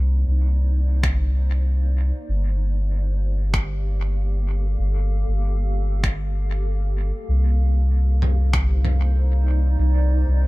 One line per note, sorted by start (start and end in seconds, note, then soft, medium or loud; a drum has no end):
0.00 0.24 C2 medium
0.00 10.47 A#3 medium
0.00 2.29 D#4 medium
0.00 4.30 C5 medium
0.00 4.31 D5 medium
0.27 2.12 C2 medium
1.03 finger snap medium
1.03 kick loud
2.29 4.76 G1 medium
2.36 8.44 G4 medium
3.07 9.30 F5 medium
3.37 9.31 A4 medium
3.54 finger snap loud
3.54 kick loud
4.79 5.24 G1 loud
5.28 7.12 G1 medium
6.04 finger snap medium
6.04 kick loud
7.28 9.76 C2 loud
7.76 10.47 D#4 medium
7.76 10.47 C5 medium
8.22 mid tom medium
8.53 finger snap medium
8.53 kick loud
8.76 10.47 D5 medium
8.85 mid tom medium
9.79 10.24 C2 loud
10.28 10.47 C2 medium